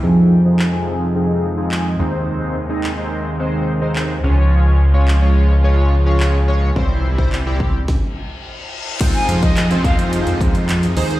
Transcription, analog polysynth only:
X:1
M:4/4
L:1/16
Q:1/4=107
K:Fm
V:1 name="Analog polysynth"
[F,CEA]2 z [F,CEA] z [F,CEA]2 z [F,CEA]2 z [F,CEA]2 z [A,CEc]2- | [A,CEc]2 z [A,CEe] z [A,CEc]2 z [A,CEc]2 z [A,CEc]2 z [A,DFd]2- | [A,DFd]2 z [A,DFd] z [A,DFd]2 z [A,DFd]2 z [A,DFd]2 z [A,DFd] z | [G,C=Ec]2 z [G,CEc] z [G,CEG]2 z8 z |
[A,CEFc]4 z [A,CEFc] [A,CEFc]6 z2 [EAc]2 |]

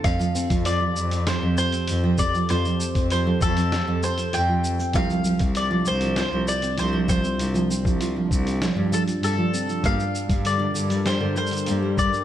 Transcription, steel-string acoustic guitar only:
X:1
M:4/4
L:1/16
Q:1/4=98
K:F
V:1 name="Steel-string acoustic guitar" clef=bass
z F, C F, F F, z C F, F, F, C2 F, C F, | F F, z C F, F, F, C2 F, C F, F F, z C | F, F, F, C2 F, C F, F F, z C F, F, F, C- | C F, C F, F F, z C F, F, F, C2 F, C F, |
B, G,2 G, D, D, D, G,2 D, G, D, B, G,2 G, |]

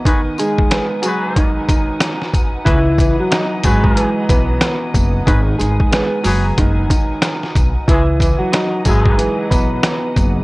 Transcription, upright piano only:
X:1
M:4/4
L:1/8
Q:"Swing 16ths" 1/4=92
K:C#m
V:1 name="Upright piano" clef=bass
D, D, B, F, D, D,3 | E, E, D F, E, E,3 | D, D, B, F, D, D,3 | E, E, D F, E, E,3 |]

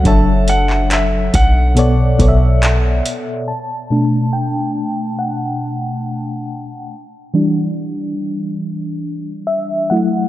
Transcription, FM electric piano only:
X:1
M:4/4
L:1/8
Q:1/4=70
K:Bm
V:1 name="FM electric piano"
[F,DAce]3 z [B,,B,Acd] [B,,B,Acde]2 z | a2 g2 f3 z | z6 e f |]
V:2 name="FM electric piano"
z8 | z [B,,A,D]6- [B,,A,D] | z [E,G,D]6 [F,A,E] |]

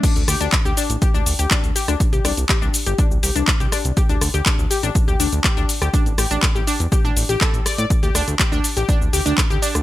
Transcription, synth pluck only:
X:1
M:4/4
L:1/16
Q:1/4=122
K:Cmix
V:1 name="Synth pluck"
D z G D z G D z G D z G D z G D | z G D z G D z G D z G D z G D z | G D z G D z G D z G D z G D z G | D z G D z G D z G D z G A z d d |
z G D z G D z G D z G D z G D z |]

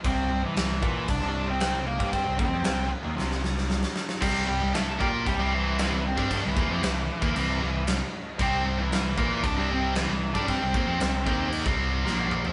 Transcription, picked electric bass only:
X:1
M:4/4
L:1/16
Q:1/4=115
K:Cmix
V:1 name="Picked electric bass" clef=bass
C,,2 C,, C,, C,,2 B,,2 C,, C,,4 C,,2 G,,- | G,, C,, _E,, F,, C,,2 z E,, C,,2 C,,2 C,, z3 | C,,2 C,, C,, C,,2 B,,2 C,, C,,4 C,,2 G,,- | G,, C,, _E,, F,, C,,2 z E,, C,,2 C,,2 C,, z3 |
C,,2 C,, C,, C,,2 B,,2 C,, C,,4 C,,2 G,,- | G,, C,, _E,, F,, C,,2 E,,3 C,,3 B,,,3 F,, |]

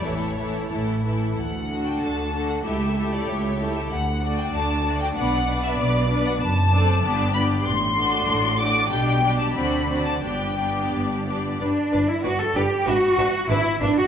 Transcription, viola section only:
X:1
M:2/4
L:1/8
Q:1/4=95
K:D
V:1 name="Viola section"
[E,A,] [E,A,] [E,A,] [E,A,] | z [D,D]2 [D,D] | [A,E] [A,E]2 [A,E] | z [A,D]2 [A,D] |
[B,D] [B,D]2 [B,D] | [K:G] z [CD] [B,D] [B,D] | z [A,D]2 [A,D] | [G,D] [G,D] [CD] [CD] |
[B,D] [B,D]2 [B,D] | D D D D | D D D D |]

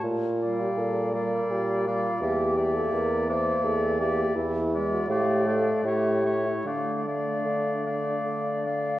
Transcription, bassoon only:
X:1
M:3/4
L:1/8
Q:1/4=82
K:Dm
V:1 name="Bassoon" clef=bass
B,,2 B,,2 B,,2 | E,,2 E,,2 E,,2 | E,,2 A,,2 A,,2 | D,2 D,2 D,2 |]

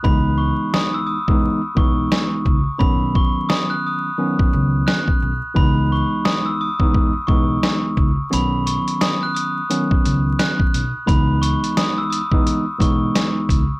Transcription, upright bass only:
X:1
M:4/4
L:1/16
Q:"Swing 16ths" 1/4=87
K:C#dor
V:1 name="Upright bass" clef=bass
C,,3 z6 z B,,,2 z2 C,, z | B,,,3 z6 z C,,2 z2 B,,, z | C,,3 z6 z B,,,2 z2 C,, z | B,,,3 z6 z C,,2 z2 B,,, z |
C,,3 z6 z B,,,2 z2 C,, z |]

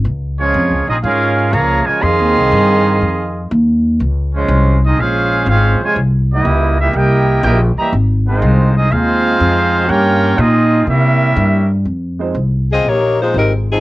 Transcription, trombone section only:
X:1
M:4/4
L:1/8
Q:"Swing" 1/4=122
K:Fm
V:1 name="Trombone section"
z [F,A,D]2 E [A,DF]2 [D,F,B,] [D,F,A,] | [E,CA]6 z2 | z [F,A,D]2 E [A,DF]2 [A,CF] [C,F,A,] | z [G,B,=E]2 [G,B,E] [B,EG]2 [B,EG] [=E,G,B,] |
z [E,A,C]2 [A,CE] [A,CF]4 | [B,DG]2 E2 [G,B,=E]3 z | z8 |]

